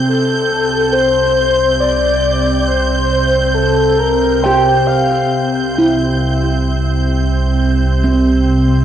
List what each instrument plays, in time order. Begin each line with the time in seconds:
Already playing: synth drone C3 C4, handpan C4, violin section G6
0.07 analog synth bass C2, soft synth lead A4
0.92 soft synth lead C5
1.80 soft synth lead D5
2.68 soft synth lead C5
3.54 soft synth lead A4
3.98 soft synth lead A#4
4.42 handpan G4 G5, soft synth lead C5
4.87 soft synth lead F5
5.30 analog synth bass C2
5.78 handpan E4
8.04 handpan C4